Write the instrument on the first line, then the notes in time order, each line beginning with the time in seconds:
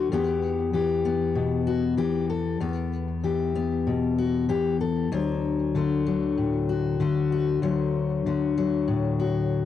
steel-string acoustic guitar
Already playing: D2 D3 F#3 A3
0.12 E2 E3 B3 G4
0.73 E3 G4
1.05 B3
1.35 B2
1.67 F#4
1.97 E3 G4
2.30 A4
2.61 E2 B3
3.24 E3 G4
3.55 B3
3.87 B2
4.18 F#4
4.49 E3 G4
4.81 A4
5.12 D2 F#3
5.75 D3 A3
6.07 F#3
6.37 A2
6.69 F#4
7.00 D3 A3
7.32 F#4
7.62 D2 F#3
8.26 D3 A3
8.57 F#3
8.88 A2
9.20 F#4